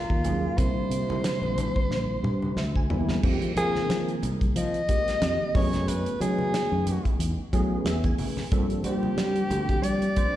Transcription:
0.00 0.59 F4 medium
0.10 0.46 D#2 medium
0.10 kick medium
0.24 0.54 D#3 medium
0.24 0.54 F#3 medium
0.24 0.54 A#3 medium
0.24 0.54 C#4 medium
0.24 0.54 G#4 medium
0.24 closed hi-hat medium
0.24 low conga medium
0.58 0.72 C2 medium
0.58 1.03 D3 medium
0.58 1.03 G3 medium
0.58 1.03 A#3 medium
0.58 1.03 C4 medium
0.58 1.03 E4 medium
0.58 2.90 C5 medium
0.58 kick medium
0.58 closed hi-hat medium
0.90 1.29 C3 medium
0.90 closed hi-hat medium
1.08 2.24 D3 medium
1.08 2.24 G3 medium
1.08 2.25 A#3 medium
1.08 2.25 C4 medium
1.08 2.25 E4 medium
1.08 high conga medium
1.08 low conga medium
1.24 snare loud
1.24 closed hi-hat medium
1.42 1.67 A#1 medium
1.42 high conga medium
1.58 closed hi-hat medium
1.58 high conga medium
1.58 low conga medium
1.76 kick medium
1.90 2.15 A#1 medium
1.90 snare soft
2.23 2.48 G2 medium
2.23 mid tom medium
2.23 high conga medium
2.42 high conga medium
2.56 2.86 D2 medium
2.56 2.74 E5 medium
2.56 snare medium
2.75 3.20 G#5 medium
2.75 kick medium
2.75 high conga soft
2.90 3.19 E2 medium
2.90 3.19 D3 medium
2.90 3.19 G3 medium
2.90 3.20 A#3 medium
2.90 3.20 C4 medium
2.90 3.20 E4 medium
2.90 floor tom medium
2.90 low conga medium
3.09 snare medium
3.09 low conga medium
3.23 3.37 F2 medium
3.23 3.53 D#3 medium
3.23 3.53 G#3 medium
3.23 3.53 A#3 medium
3.23 3.53 C4 medium
3.23 3.53 G4 medium
3.23 kick loud
3.23 crash medium
3.23 low conga soft
3.41 3.52 F3 medium
3.41 closed hi-hat soft
3.56 4.74 D#3 medium
3.56 3.81 F3 medium
3.56 4.75 G#3 medium
3.56 4.75 A#3 medium
3.56 4.75 C4 medium
3.56 4.19 G#4 loud
3.56 4.75 A#4 medium
3.56 closed hi-hat medium
3.56 high conga medium
3.75 snare soft
3.75 high conga medium
3.89 4.14 F3 medium
3.89 snare loud
3.89 closed hi-hat medium
4.09 closed hi-hat soft
4.23 4.47 C2 medium
4.23 closed hi-hat medium
4.23 low conga medium
4.41 kick medium
4.41 closed hi-hat soft
4.56 4.80 F3 medium
4.56 5.57 D#5 loud
4.56 closed hi-hat medium
4.74 closed hi-hat soft
4.88 5.54 D#3 medium
4.88 5.54 G#3 medium
4.88 5.54 A#3 medium
4.88 5.55 C4 medium
4.88 5.55 G4 medium
4.88 kick medium
4.88 closed hi-hat medium
5.07 muted fretless electric bass stroke soft
5.07 snare soft
5.07 closed hi-hat soft
5.22 5.35 F2 medium
5.22 snare loud
5.22 closed hi-hat medium
5.54 6.04 F#2 medium
5.54 6.13 E3 medium
5.54 6.13 A3 medium
5.54 6.13 B3 medium
5.54 6.14 C#4 medium
5.54 6.14 G#4 medium
5.54 5.90 C#5 medium
5.54 kick loud
5.54 open hi-hat medium
5.54 high conga medium
5.54 low conga medium
5.73 snare soft
5.73 closed hi-hat soft
5.73 high conga medium
5.88 6.21 B4 medium
5.88 closed hi-hat medium
5.88 low conga medium
6.06 closed hi-hat soft
6.20 7.39 E3 medium
6.20 6.59 F#3 medium
6.20 7.39 A3 medium
6.20 7.39 B3 medium
6.20 7.39 C#4 medium
6.20 7.39 D#4 medium
6.20 7.16 G#4 medium
6.20 closed hi-hat medium
6.20 high conga medium
6.38 high conga medium
6.54 snare loud
6.54 closed hi-hat medium
6.72 6.96 F#2 medium
6.87 closed hi-hat medium
6.87 low conga medium
7.05 kick medium
7.05 closed hi-hat soft
7.19 7.33 E2 medium
7.19 closed hi-hat medium
7.38 muted fretless electric bass stroke soft
7.53 8.42 E3 medium
7.53 7.78 F#3 medium
7.53 8.42 A3 medium
7.53 8.42 B3 medium
7.53 8.42 C#4 medium
7.53 8.42 G#4 medium
7.53 kick medium
7.53 closed hi-hat medium
7.85 8.10 E2 loud
7.85 8.03 E5 medium
7.85 snare loud
7.85 closed hi-hat medium
8.04 8.49 G#5 medium
8.04 kick medium
8.04 closed hi-hat soft
8.18 open hi-hat medium
8.18 high conga medium
8.18 low conga medium
8.37 snare soft
8.37 high conga medium
8.52 8.65 G2 medium
8.52 8.81 F3 medium
8.52 8.81 A#3 medium
8.52 8.81 C4 medium
8.52 8.81 D4 medium
8.52 8.81 A4 medium
8.52 kick loud
8.52 closed hi-hat medium
8.52 low conga soft
8.69 8.80 G3 medium
8.69 closed hi-hat soft
8.84 10.03 F3 medium
8.84 9.09 G3 medium
8.84 10.03 A#3 medium
8.84 10.04 C4 medium
8.84 10.04 D4 medium
8.84 9.85 G4 medium
8.84 10.04 C5 medium
8.84 closed hi-hat medium
8.84 high conga medium
9.03 high conga medium
9.17 9.42 G3 medium
9.17 snare loud
9.17 closed hi-hat medium
9.36 closed hi-hat soft
9.50 9.75 D2 medium
9.50 closed hi-hat medium
9.50 low conga medium
9.69 kick medium
9.69 closed hi-hat soft
9.82 10.08 G3 medium
9.82 10.36 D5 loud
9.82 closed hi-hat medium
10.02 closed hi-hat soft
10.16 10.36 F3 medium
10.16 10.36 A#3 medium
10.16 10.36 C4 medium
10.16 10.36 D4 medium
10.16 10.36 C5 medium
10.16 kick medium
10.16 closed hi-hat medium

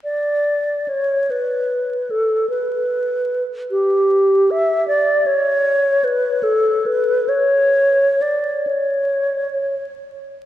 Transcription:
0.04 0.90 D5 soft
0.88 1.32 C#5 soft
1.30 2.12 B4 soft
2.10 2.49 A4 soft
2.49 3.43 B4 medium
3.71 4.52 G4 medium
4.51 4.87 E5 medium
4.88 5.28 D5 medium
5.26 6.06 C#5 medium
6.04 6.45 B4 medium
6.43 6.88 A4 medium
6.86 7.30 B4 medium
7.29 8.23 C#5 medium
8.22 8.69 D5 soft
8.67 9.86 C#5 soft

